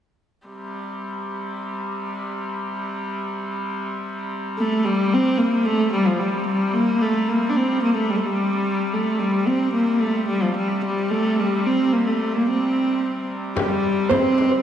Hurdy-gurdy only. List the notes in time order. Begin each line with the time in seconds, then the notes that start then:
0.47 C3 G3
4.83 C3 G3
9.20 C3 G3
13.56 C3 G3